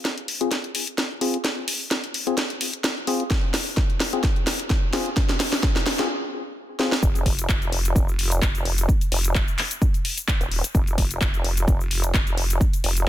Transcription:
0.05 snare soft
0.05 closed hi-hat medium
0.18 closed hi-hat soft
0.28 open hi-hat medium
0.41 0.50 C4 medium
0.41 0.50 F4 medium
0.41 0.50 G#4 loud
0.41 closed hi-hat soft
0.51 snare soft
0.51 closed hi-hat medium
0.64 closed hi-hat soft
0.75 open hi-hat loud
0.87 closed hi-hat soft
0.98 snare medium
0.98 closed hi-hat medium
1.21 1.37 C4 medium
1.21 1.37 F4 medium
1.21 1.37 G#4 loud
1.21 open hi-hat medium
1.34 closed hi-hat soft
1.45 snare medium
1.45 closed hi-hat medium
1.68 open hi-hat loud
1.91 snare medium
1.91 closed hi-hat medium
2.04 closed hi-hat soft
2.14 open hi-hat medium
2.27 2.36 C4 medium
2.27 2.36 F4 medium
2.27 2.36 G#4 loud
2.27 closed hi-hat soft
2.38 snare medium
2.38 closed hi-hat medium
2.50 closed hi-hat soft
2.61 open hi-hat loud
2.73 closed hi-hat soft
2.84 snare medium
2.84 closed hi-hat medium
3.07 3.23 C4 medium
3.07 3.23 F4 medium
3.07 3.23 G#4 loud
3.07 open hi-hat medium
3.20 closed hi-hat soft
3.31 kick loud
3.31 snare medium
3.31 closed hi-hat medium
3.54 snare medium
3.54 open hi-hat loud
3.77 kick loud
3.77 snare medium
3.77 closed hi-hat medium
3.90 closed hi-hat soft
4.00 snare medium
4.00 open hi-hat loud
4.13 4.22 C4 loud
4.13 4.22 F4 medium
4.13 4.22 G#4 loud
4.13 closed hi-hat medium
4.24 kick loud
4.24 snare medium
4.24 closed hi-hat medium
4.36 closed hi-hat soft
4.47 snare medium
4.47 open hi-hat loud
4.60 closed hi-hat medium
4.70 kick loud
4.70 snare medium
4.70 closed hi-hat medium
4.93 5.09 C4 medium
4.93 5.09 F4 medium
4.93 5.09 G#4 loud
4.93 snare medium
4.93 open hi-hat loud
5.06 closed hi-hat soft
5.17 kick loud
5.17 snare medium
5.17 closed hi-hat medium
5.29 snare medium
5.40 snare medium
5.40 open hi-hat loud
5.53 snare medium
5.63 kick loud
5.63 snare medium
5.63 closed hi-hat medium
5.76 snare medium
5.76 closed hi-hat soft
5.86 snare loud
5.86 open hi-hat loud
5.99 6.08 C4 medium
5.99 6.08 F4 medium
5.99 6.08 G#4 loud
5.99 snare medium
5.99 closed hi-hat medium
6.79 6.95 C4 loud
6.79 6.95 F4 medium
6.79 6.95 G#4 loud
6.79 snare medium
6.92 snare medium
7.03 7.47 F1 loud
7.03 kick loud
7.03 cabasa medium
7.15 closed hi-hat medium
7.15 cabasa soft
7.26 kick medium
7.26 open hi-hat loud
7.39 closed hi-hat medium
7.39 cabasa medium
7.49 7.94 F1 loud
7.49 kick loud
7.49 clap loud
7.49 cabasa medium
7.62 closed hi-hat soft
7.62 cabasa soft
7.72 open hi-hat loud
7.85 closed hi-hat medium
7.85 cabasa medium
7.96 8.40 F1 medium
7.96 kick loud
7.96 cabasa medium
8.08 cabasa soft
8.19 open hi-hat loud
8.32 closed hi-hat medium
8.32 cabasa medium
8.42 8.87 F1 loud
8.42 kick loud
8.42 clap loud
8.42 cabasa medium
8.55 closed hi-hat medium
8.55 cabasa soft
8.65 open hi-hat medium
8.78 closed hi-hat medium
8.78 cabasa medium
8.89 kick loud
8.89 cabasa medium
9.01 closed hi-hat medium
9.01 cabasa soft
9.12 9.46 F1 medium
9.12 open hi-hat loud
9.25 closed hi-hat medium
9.25 cabasa medium
9.35 kick loud
9.35 clap loud
9.35 cabasa medium
9.48 closed hi-hat soft
9.48 cabasa soft
9.58 clap medium
9.58 open hi-hat loud
9.71 closed hi-hat medium
9.71 cabasa medium
9.82 kick loud
9.82 cabasa medium
9.94 closed hi-hat soft
9.94 cabasa soft
10.05 open hi-hat loud
10.18 closed hi-hat medium
10.18 cabasa medium
10.28 kick loud
10.28 clap loud
10.28 cabasa medium
10.41 10.62 D#1 loud
10.41 closed hi-hat medium
10.41 cabasa soft
10.52 open hi-hat loud
10.64 closed hi-hat medium
10.64 cabasa medium
10.75 11.20 F1 loud
10.75 kick loud
10.75 cabasa medium
10.87 closed hi-hat medium
10.87 cabasa soft
10.98 kick medium
10.98 open hi-hat loud
11.11 closed hi-hat medium
11.11 cabasa medium
11.21 11.66 F1 loud
11.21 kick loud
11.21 clap loud
11.21 cabasa medium
11.34 closed hi-hat soft
11.34 cabasa soft
11.45 open hi-hat loud
11.57 closed hi-hat medium
11.57 cabasa medium
11.68 12.13 F1 loud
11.68 kick loud
11.68 cabasa medium
11.81 cabasa soft
11.91 open hi-hat loud
12.04 closed hi-hat medium
12.04 cabasa medium
12.14 12.59 F1 medium
12.14 kick loud
12.14 clap loud
12.14 cabasa medium
12.27 closed hi-hat medium
12.27 cabasa soft
12.38 open hi-hat loud
12.50 closed hi-hat medium
12.50 cabasa medium
12.61 kick loud
12.61 cabasa medium
12.73 closed hi-hat medium
12.73 cabasa soft
12.84 13.09 F1 loud
12.84 open hi-hat loud
12.97 closed hi-hat medium
12.97 cabasa medium

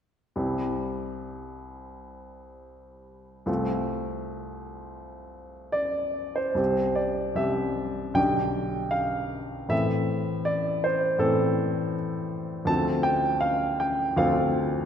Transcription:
0.36 3.43 C2 soft
0.36 3.43 G3 soft
0.36 3.44 C4 soft
0.36 3.44 E4 soft
3.46 6.53 C2 soft
3.46 6.54 A3 soft
3.46 6.54 C4 soft
3.46 6.54 F4 soft
5.72 6.37 D5 medium
6.36 6.98 C5 medium
6.55 7.33 C2 soft
6.55 7.34 G3 soft
6.55 7.35 C4 soft
6.55 7.35 G4 soft
6.95 7.37 D5 medium
7.35 8.13 C2 soft
7.35 8.14 G3 soft
7.35 8.14 C4 soft
7.35 8.14 G4 soft
7.35 8.16 E5 medium
8.14 9.66 B1 soft
8.14 9.67 D3 soft
8.14 9.67 D4 soft
8.14 9.67 G4 soft
8.14 8.93 G5 medium
8.91 9.70 F5 medium
9.69 11.16 A2 soft
9.69 11.16 E3 soft
9.69 11.17 C4 soft
9.69 11.17 A4 soft
9.69 10.46 E5 medium
10.45 10.83 D5 medium
10.84 11.21 C5 medium
11.19 12.63 A2 soft
11.19 12.64 E3 soft
11.19 12.64 C4 soft
11.19 11.93 A4 medium
12.65 14.15 D2 medium
12.65 14.15 F3 soft
12.65 14.16 C4 soft
12.65 14.16 A4 soft
12.65 13.06 A5 medium
13.03 13.43 G5 medium
13.40 13.80 F5 medium
13.80 14.19 G5 medium
14.17 14.85 D2 medium
14.17 14.85 F3 soft
14.17 14.85 C4 soft
14.17 14.85 A4 soft
14.17 14.85 F5 medium

